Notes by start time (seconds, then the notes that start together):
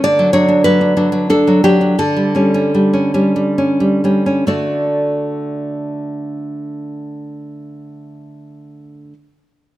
0.04 D3 D5
0.19 F#3
0.33 F#3 D4 C#5
0.48 D4
0.64 F#3 B4
0.81 D4
0.97 F#3 D4
1.12 F#3
1.30 D4 A4
1.47 F#3
1.64 F#3 D4 G4
1.81 D4
1.99 D3 A4
2.16 G3
2.35 G3 C#4
2.54 C#4
2.74 G3
2.93 C#4
3.14 G3 C#4
3.36 G3
3.58 C#4
3.80 G3
4.04 G3 C#4
4.26 C#4
4.47 D3 A3 F#4 A4 D5